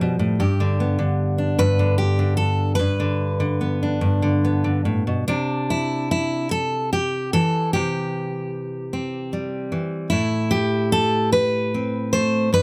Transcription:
0, 0, Header, 1, 2, 480
1, 0, Start_track
1, 0, Key_signature, 0, "major"
1, 0, Tempo, 801068
1, 235, Time_signature, 6, 3, 24, 8
1, 1680, Tempo, 826446
1, 4080, Tempo, 798935
1, 7497, End_track
2, 0, Start_track
2, 0, Title_t, "Steel-string acoustic guitar"
2, 0, Program_c, 0, 25
2, 0, Note_on_c, 0, 53, 63
2, 0, Note_on_c, 0, 55, 46
2, 0, Note_on_c, 0, 71, 93
2, 7, Note_on_c, 0, 47, 65
2, 114, Note_off_c, 0, 47, 0
2, 116, Note_on_c, 0, 45, 57
2, 208, Note_off_c, 0, 53, 0
2, 234, Note_off_c, 0, 45, 0
2, 238, Note_off_c, 0, 71, 0
2, 238, Note_on_c, 0, 43, 77
2, 240, Note_on_c, 0, 67, 51
2, 361, Note_on_c, 0, 50, 62
2, 478, Note_off_c, 0, 55, 0
2, 480, Note_on_c, 0, 59, 44
2, 584, Note_off_c, 0, 50, 0
2, 591, Note_on_c, 0, 50, 59
2, 829, Note_on_c, 0, 62, 48
2, 947, Note_off_c, 0, 43, 0
2, 950, Note_off_c, 0, 67, 0
2, 950, Note_on_c, 0, 43, 74
2, 952, Note_on_c, 0, 71, 106
2, 1067, Note_off_c, 0, 50, 0
2, 1074, Note_on_c, 0, 50, 63
2, 1184, Note_off_c, 0, 71, 0
2, 1186, Note_on_c, 0, 67, 81
2, 1304, Note_off_c, 0, 50, 0
2, 1311, Note_on_c, 0, 50, 60
2, 1417, Note_off_c, 0, 67, 0
2, 1420, Note_on_c, 0, 69, 84
2, 1646, Note_off_c, 0, 69, 0
2, 1648, Note_on_c, 0, 71, 92
2, 1649, Note_off_c, 0, 50, 0
2, 1650, Note_off_c, 0, 43, 0
2, 1650, Note_off_c, 0, 62, 0
2, 1655, Note_off_c, 0, 59, 0
2, 1674, Note_on_c, 0, 43, 74
2, 1792, Note_on_c, 0, 50, 62
2, 2019, Note_off_c, 0, 50, 0
2, 2026, Note_on_c, 0, 50, 57
2, 2147, Note_on_c, 0, 59, 43
2, 2274, Note_on_c, 0, 62, 45
2, 2375, Note_off_c, 0, 43, 0
2, 2382, Note_on_c, 0, 43, 69
2, 2498, Note_off_c, 0, 50, 0
2, 2505, Note_on_c, 0, 50, 62
2, 2627, Note_off_c, 0, 59, 0
2, 2634, Note_on_c, 0, 59, 47
2, 2741, Note_off_c, 0, 50, 0
2, 2748, Note_on_c, 0, 50, 51
2, 2867, Note_off_c, 0, 50, 0
2, 2870, Note_on_c, 0, 45, 60
2, 2994, Note_off_c, 0, 45, 0
2, 2996, Note_on_c, 0, 47, 54
2, 3083, Note_off_c, 0, 43, 0
2, 3089, Note_off_c, 0, 59, 0
2, 3089, Note_off_c, 0, 62, 0
2, 3103, Note_off_c, 0, 71, 0
2, 3117, Note_on_c, 0, 62, 87
2, 3118, Note_off_c, 0, 47, 0
2, 3120, Note_on_c, 0, 48, 65
2, 3364, Note_on_c, 0, 64, 84
2, 3595, Note_off_c, 0, 64, 0
2, 3602, Note_on_c, 0, 64, 87
2, 3832, Note_off_c, 0, 64, 0
2, 3834, Note_on_c, 0, 69, 96
2, 3842, Note_off_c, 0, 62, 0
2, 4072, Note_off_c, 0, 69, 0
2, 4075, Note_on_c, 0, 67, 86
2, 4316, Note_off_c, 0, 67, 0
2, 4318, Note_on_c, 0, 69, 92
2, 4324, Note_off_c, 0, 48, 0
2, 4324, Note_on_c, 0, 52, 62
2, 4556, Note_off_c, 0, 69, 0
2, 4558, Note_on_c, 0, 67, 86
2, 4570, Note_on_c, 0, 48, 65
2, 5278, Note_on_c, 0, 60, 48
2, 5518, Note_on_c, 0, 55, 49
2, 5749, Note_off_c, 0, 52, 0
2, 5752, Note_on_c, 0, 52, 55
2, 5760, Note_off_c, 0, 48, 0
2, 5964, Note_off_c, 0, 52, 0
2, 5965, Note_off_c, 0, 60, 0
2, 5977, Note_off_c, 0, 67, 0
2, 5980, Note_on_c, 0, 64, 97
2, 5993, Note_on_c, 0, 45, 64
2, 5994, Note_off_c, 0, 55, 0
2, 6226, Note_on_c, 0, 67, 92
2, 6465, Note_off_c, 0, 64, 0
2, 6475, Note_on_c, 0, 69, 108
2, 6715, Note_off_c, 0, 69, 0
2, 6717, Note_on_c, 0, 71, 106
2, 6952, Note_off_c, 0, 67, 0
2, 6969, Note_on_c, 0, 60, 45
2, 7197, Note_off_c, 0, 71, 0
2, 7199, Note_on_c, 0, 72, 98
2, 7203, Note_on_c, 0, 57, 58
2, 7412, Note_off_c, 0, 57, 0
2, 7416, Note_off_c, 0, 60, 0
2, 7437, Note_off_c, 0, 45, 0
2, 7438, Note_on_c, 0, 43, 66
2, 7439, Note_off_c, 0, 72, 0
2, 7445, Note_on_c, 0, 71, 113
2, 7497, Note_off_c, 0, 43, 0
2, 7497, Note_off_c, 0, 71, 0
2, 7497, End_track
0, 0, End_of_file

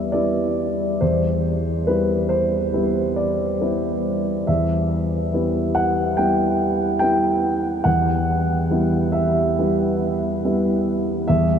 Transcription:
0, 0, Header, 1, 2, 480
1, 0, Start_track
1, 0, Key_signature, 1, "minor"
1, 0, Tempo, 868307
1, 562, Time_signature, 4, 2, 24, 8
1, 2476, Tempo, 845070
1, 4396, Tempo, 857143
1, 6485, End_track
2, 0, Start_track
2, 0, Title_t, "Grand piano"
2, 0, Program_c, 0, 0
2, 0, Control_c, 0, 64, 127
2, 0, Note_on_c, 0, 55, 29
2, 0, Note_on_c, 0, 59, 29
2, 0, Note_on_c, 0, 64, 32
2, 0, Note_on_c, 0, 74, 50
2, 0, Note_on_c, 0, 76, 46
2, 57, Note_off_c, 0, 64, 0
2, 67, Note_off_c, 0, 74, 0
2, 67, Note_on_c, 0, 74, 50
2, 73, Note_off_c, 0, 76, 0
2, 75, Note_off_c, 0, 55, 0
2, 75, Note_on_c, 0, 55, 28
2, 78, Note_off_c, 0, 59, 0
2, 78, Note_on_c, 0, 59, 30
2, 78, Note_on_c, 0, 64, 32
2, 539, Note_off_c, 0, 55, 0
2, 541, Note_off_c, 0, 59, 0
2, 541, Note_off_c, 0, 64, 0
2, 557, Note_off_c, 0, 74, 0
2, 557, Note_on_c, 0, 72, 49
2, 563, Note_on_c, 0, 40, 36
2, 570, Control_c, 0, 64, 0
2, 662, Control_c, 0, 64, 127
2, 1022, Note_off_c, 0, 40, 0
2, 1034, Note_off_c, 0, 72, 0
2, 1034, Note_on_c, 0, 71, 49
2, 1038, Note_on_c, 0, 55, 26
2, 1040, Note_on_c, 0, 59, 26
2, 1045, Note_on_c, 0, 64, 30
2, 1266, Note_on_c, 0, 72, 54
2, 1271, Note_off_c, 0, 71, 0
2, 1490, Note_off_c, 0, 55, 0
2, 1491, Note_off_c, 0, 59, 0
2, 1493, Note_off_c, 0, 64, 0
2, 1509, Note_on_c, 0, 55, 31
2, 1513, Note_on_c, 0, 59, 33
2, 1514, Note_on_c, 0, 64, 35
2, 1748, Note_on_c, 0, 74, 51
2, 1751, Note_off_c, 0, 72, 0
2, 1973, Note_off_c, 0, 55, 0
2, 1975, Note_off_c, 0, 59, 0
2, 1975, Note_off_c, 0, 64, 0
2, 1995, Note_on_c, 0, 55, 30
2, 1997, Note_on_c, 0, 59, 32
2, 2000, Note_on_c, 0, 64, 33
2, 2454, Note_off_c, 0, 55, 0
2, 2455, Note_off_c, 0, 59, 0
2, 2456, Note_off_c, 0, 64, 0
2, 2472, Note_on_c, 0, 76, 51
2, 2474, Note_off_c, 0, 74, 0
2, 2479, Note_on_c, 0, 40, 38
2, 2484, Control_c, 0, 64, 0
2, 2570, Control_c, 0, 64, 127
2, 2949, Note_off_c, 0, 40, 0
2, 2963, Note_on_c, 0, 55, 30
2, 2966, Note_on_c, 0, 59, 30
2, 2969, Note_on_c, 0, 64, 33
2, 3196, Note_on_c, 0, 78, 62
2, 3200, Note_off_c, 0, 76, 0
2, 3418, Note_off_c, 0, 55, 0
2, 3419, Note_off_c, 0, 59, 0
2, 3421, Note_off_c, 0, 64, 0
2, 3436, Note_on_c, 0, 79, 62
2, 3437, Note_off_c, 0, 78, 0
2, 3446, Note_on_c, 0, 55, 32
2, 3449, Note_on_c, 0, 59, 31
2, 3449, Note_on_c, 0, 64, 35
2, 3896, Note_off_c, 0, 79, 0
2, 3897, Note_off_c, 0, 55, 0
2, 3899, Note_off_c, 0, 59, 0
2, 3899, Note_off_c, 0, 64, 0
2, 3905, Note_on_c, 0, 79, 66
2, 3912, Note_on_c, 0, 55, 33
2, 3914, Note_on_c, 0, 59, 33
2, 3918, Note_on_c, 0, 64, 34
2, 4372, Note_off_c, 0, 55, 0
2, 4373, Note_off_c, 0, 59, 0
2, 4375, Note_off_c, 0, 64, 0
2, 4385, Note_on_c, 0, 78, 61
2, 4391, Note_off_c, 0, 79, 0
2, 4392, Note_on_c, 0, 40, 45
2, 4406, Control_c, 0, 64, 0
2, 4508, Control_c, 0, 64, 127
2, 4858, Note_off_c, 0, 40, 0
2, 4870, Note_on_c, 0, 55, 34
2, 4874, Note_on_c, 0, 59, 32
2, 4874, Note_on_c, 0, 64, 36
2, 5102, Note_on_c, 0, 76, 58
2, 5109, Note_off_c, 0, 78, 0
2, 5332, Note_off_c, 0, 55, 0
2, 5334, Note_off_c, 0, 59, 0
2, 5334, Note_off_c, 0, 64, 0
2, 5362, Note_on_c, 0, 55, 37
2, 5364, Note_on_c, 0, 59, 37
2, 5368, Note_on_c, 0, 64, 39
2, 5592, Note_off_c, 0, 76, 0
2, 5818, Note_off_c, 0, 55, 0
2, 5819, Note_off_c, 0, 59, 0
2, 5821, Note_off_c, 0, 64, 0
2, 5844, Note_on_c, 0, 55, 34
2, 5847, Note_on_c, 0, 59, 33
2, 5850, Note_on_c, 0, 64, 38
2, 6299, Note_off_c, 0, 55, 0
2, 6300, Note_off_c, 0, 59, 0
2, 6301, Note_off_c, 0, 64, 0
2, 6309, Note_on_c, 0, 76, 65
2, 6319, Note_on_c, 0, 40, 45
2, 6327, Control_c, 0, 64, 0
2, 6410, Control_c, 0, 64, 127
2, 6485, Note_off_c, 0, 40, 0
2, 6485, Note_off_c, 0, 76, 0
2, 6485, End_track
0, 0, End_of_file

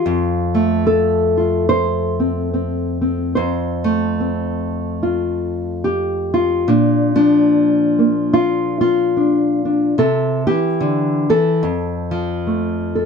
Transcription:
0, 0, Header, 1, 2, 480
1, 0, Start_track
1, 0, Key_signature, -1, "major"
1, 0, Tempo, 826446
1, 32, Time_signature, 4, 2, 24, 8
1, 7582, End_track
2, 0, Start_track
2, 0, Title_t, "Nylon-string guitar"
2, 0, Program_c, 0, 24
2, 0, Note_on_c, 0, 65, 76
2, 33, Note_on_c, 0, 41, 69
2, 317, Note_on_c, 0, 57, 55
2, 503, Note_on_c, 0, 69, 83
2, 791, Note_off_c, 0, 65, 0
2, 798, Note_on_c, 0, 65, 38
2, 979, Note_off_c, 0, 65, 0
2, 981, Note_on_c, 0, 72, 95
2, 1267, Note_off_c, 0, 69, 0
2, 1276, Note_on_c, 0, 60, 46
2, 1466, Note_off_c, 0, 60, 0
2, 1473, Note_on_c, 0, 60, 43
2, 1744, Note_off_c, 0, 60, 0
2, 1751, Note_on_c, 0, 60, 40
2, 1930, Note_off_c, 0, 57, 0
2, 1940, Note_off_c, 0, 72, 0
2, 1947, Note_on_c, 0, 72, 70
2, 1949, Note_off_c, 0, 41, 0
2, 1956, Note_on_c, 0, 41, 66
2, 2232, Note_on_c, 0, 57, 55
2, 2431, Note_off_c, 0, 60, 0
2, 2440, Note_on_c, 0, 60, 48
2, 2909, Note_off_c, 0, 72, 0
2, 2920, Note_on_c, 0, 65, 46
2, 3391, Note_off_c, 0, 60, 0
2, 3393, Note_on_c, 0, 67, 73
2, 3674, Note_off_c, 0, 65, 0
2, 3681, Note_on_c, 0, 65, 75
2, 3849, Note_off_c, 0, 57, 0
2, 3873, Note_off_c, 0, 67, 0
2, 3875, Note_off_c, 0, 41, 0
2, 3877, Note_off_c, 0, 65, 0
2, 3878, Note_on_c, 0, 46, 68
2, 3881, Note_on_c, 0, 62, 74
2, 4149, Note_off_c, 0, 62, 0
2, 4156, Note_on_c, 0, 53, 61
2, 4158, Note_on_c, 0, 62, 83
2, 4639, Note_on_c, 0, 58, 40
2, 4841, Note_on_c, 0, 65, 89
2, 5109, Note_off_c, 0, 65, 0
2, 5116, Note_on_c, 0, 65, 92
2, 5316, Note_off_c, 0, 62, 0
2, 5325, Note_on_c, 0, 62, 44
2, 5599, Note_off_c, 0, 62, 0
2, 5606, Note_on_c, 0, 62, 44
2, 5773, Note_off_c, 0, 53, 0
2, 5774, Note_off_c, 0, 58, 0
2, 5777, Note_off_c, 0, 62, 0
2, 5794, Note_off_c, 0, 46, 0
2, 5796, Note_off_c, 0, 65, 0
2, 5796, Note_on_c, 0, 48, 68
2, 5801, Note_on_c, 0, 69, 90
2, 6075, Note_off_c, 0, 48, 0
2, 6078, Note_off_c, 0, 69, 0
2, 6080, Note_on_c, 0, 52, 55
2, 6080, Note_on_c, 0, 67, 99
2, 6276, Note_on_c, 0, 50, 54
2, 6553, Note_off_c, 0, 52, 0
2, 6555, Note_off_c, 0, 50, 0
2, 6558, Note_off_c, 0, 67, 0
2, 6560, Note_on_c, 0, 52, 52
2, 6563, Note_on_c, 0, 69, 93
2, 6753, Note_on_c, 0, 41, 68
2, 6759, Note_off_c, 0, 52, 0
2, 7034, Note_on_c, 0, 53, 56
2, 7242, Note_on_c, 0, 57, 41
2, 7516, Note_off_c, 0, 69, 0
2, 7523, Note_on_c, 0, 69, 41
2, 7582, Note_off_c, 0, 41, 0
2, 7582, Note_off_c, 0, 53, 0
2, 7582, Note_off_c, 0, 57, 0
2, 7582, Note_off_c, 0, 69, 0
2, 7582, End_track
0, 0, End_of_file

